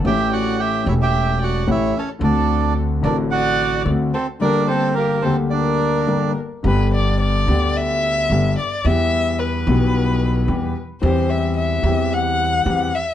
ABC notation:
X:1
M:4/4
L:1/16
Q:1/4=110
K:Gm
V:1 name="Violin"
=e2 d2 e2 ^c e3 d2 c2 A2 | A4 z2 B2 d4 z2 A2 | B2 A2 G2 A2 B6 z2 | [K:G] B2 d2 d4 e6 d2 |
e4 B8- B2 z2 | c2 e2 e4 f6 e2 |]
V:2 name="Bandoneon"
[Gg]2 [^F^f]2 [Gg]2 [=E=e] [Gg]3 [Ff]2 [Ee]2 [^C^c]2 | [Dd]4 z2 [Dd]2 [^F^f]4 z2 [Cc]2 | [Dd]2 [Cc]2 [B,B]2 [Cc]2 [Dd]6 z2 | [K:G] z16 |
z16 | z16 |]
V:3 name="Grand piano" clef=bass
[A,,,A,,=E,A,^CG]6 [=E,,,=E,,E,A,CG]6 [A,,,A,,E,A,CG]2 z2 | [D,,D,A,C^F]6 [A,,,A,,D,A,CF]6 [D,,D,A,CF]2 z2 | [G,,,G,,D,G,B,G]6 [D,,D,G,B,G]6 [G,,,G,,D,G,B,G]2 z2 | [K:G] [G,,,G,,D,G,B,G]6 [D,,D,G,B,G]6 [G,,,G,,D,G,B,G]2 z2 |
[E,,E,G,B,G]6 [B,,,B,,E,G,B,G]6 [E,,E,G,B,G]2 z2 | [E,,E,G,CG]6 [E,,E,G,CG]6 [E,,E,G,CG]2 z2 |]
V:4 name="Upright bass" clef=bass
A,,,6 =E,,,6 A,,,2 z2 | D,,6 A,,,6 D,,2 z2 | z16 | [K:G] G,,,6 D,,6 G,,,2 z2 |
E,,6 B,,,6 E,,2 z2 | E,,6 E,,6 E,,2 z2 |]